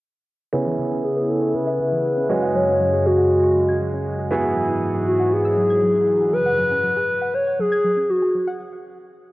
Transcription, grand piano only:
0.53 2.26 B3 medium
0.53 2.26 C#4 medium
0.53 2.26 E4 medium
0.53 2.26 G#4 medium
2.29 4.27 G#3 medium
2.29 4.27 C#4 medium
2.29 4.28 F#4 medium
2.29 4.28 G#4 medium
4.31 6.29 B3 medium
4.31 6.29 E4 medium
4.31 6.29 F#4 medium
4.31 6.29 G#4 medium

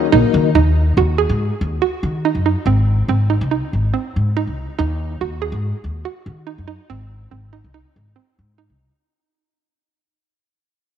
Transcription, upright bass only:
0.13 0.22 A#1 medium
0.34 0.53 D#3 medium
0.55 0.92 D#2 medium
0.97 1.25 D#2 medium
1.29 1.48 G#2 medium
1.61 1.80 D#2 medium
2.03 2.31 D#3 medium
2.35 2.53 F#2 medium
2.66 3.03 G#1 medium
3.08 3.37 G#1 medium
3.41 3.59 C2 medium
3.73 3.91 G#1 medium
4.16 4.44 G#2 medium
4.47 4.65 C2 medium
4.79 5.16 D#2 medium
5.21 5.49 D#2 medium
5.52 5.71 G#2 medium
5.84 6.03 D#2 medium
6.26 6.54 D#3 medium
6.58 6.77 F#2 medium
6.90 7.27 G#1 medium
7.31 7.60 G#1 medium
7.64 7.83 C2 medium
7.96 8.14 G#1 medium
8.39 8.66 G#2 medium
8.70 8.88 C2 medium

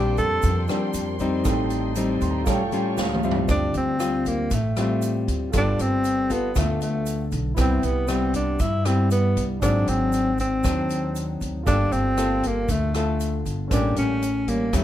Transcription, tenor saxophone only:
0.00 0.18 G4 medium
0.18 0.65 A4 loud
3.51 3.74 D4 loud
3.77 4.29 C4 medium
4.28 4.55 A#3 medium
4.54 4.78 A3 medium
4.79 5.25 A3 medium
5.57 5.83 D4 loud
5.82 6.34 C4 loud
6.33 6.57 B3 medium
6.58 6.80 A3 medium
6.83 7.29 A3 medium
7.59 7.86 C4 medium
7.85 8.10 B3 medium
8.09 8.34 C4 medium
8.36 8.62 D4 medium
8.61 8.88 E4 medium
8.86 9.11 C4 medium
9.11 9.47 B3 medium
9.62 9.90 D4 medium
9.89 10.39 C4 medium
10.40 11.38 C4 medium
11.67 11.94 D4 loud
11.92 12.49 C4 loud
12.47 12.73 A#3 medium
12.71 12.95 A3 medium
12.96 13.43 A3 medium
13.72 13.95 D4 medium
13.98 14.51 C#4 medium
14.49 14.78 A#3 medium
14.76 14.84 A3 medium

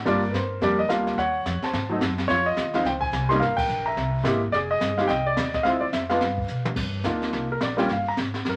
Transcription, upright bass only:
0.06 0.32 G1 medium
0.33 0.60 G2 medium
0.61 0.88 F2 medium
0.89 1.16 D2 medium
1.17 1.44 D#2 medium
1.46 1.61 F2 medium
1.74 2.00 G#2 medium
2.01 2.28 F#2 medium
2.30 2.56 F2 medium
2.56 2.84 D#2 medium
2.84 3.11 C#2 medium
3.12 3.40 C2 medium
3.40 3.67 G1 medium
3.68 3.96 A#1 medium
3.96 4.23 C2 medium
4.23 4.51 G#1 medium
4.52 4.80 F1 medium
4.80 5.08 G1 medium
5.09 5.36 C2 medium
5.37 5.64 D#2 medium
5.64 5.92 D2 medium
5.92 6.20 F2 medium
6.21 6.48 G2 medium
6.49 6.75 B2 medium
6.76 7.03 G2 medium
7.05 7.32 D2 medium
7.33 7.60 C2 medium
7.61 7.88 A#1 medium
7.89 8.16 G1 medium
8.17 8.44 G#1 medium
8.46 8.56 F#1 medium

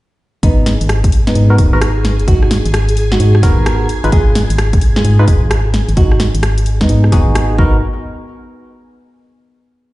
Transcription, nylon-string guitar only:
0.43 0.72 B3 medium
0.43 0.72 D#4 medium
1.27 2.21 B3 medium
1.27 2.21 D#4 medium
2.28 2.57 D#4 medium
2.28 2.57 F#4 loud
3.12 4.06 D#4 medium
3.12 4.06 F#4 medium
4.12 4.41 F4 medium
4.12 4.41 G#4 loud
4.96 5.90 F4 medium
4.96 5.90 G#4 loud
5.97 6.26 D#4 medium
5.97 6.26 F#4 loud
6.81 7.58 B3 medium
6.81 7.57 D#4 medium
7.59 7.77 D#4 medium

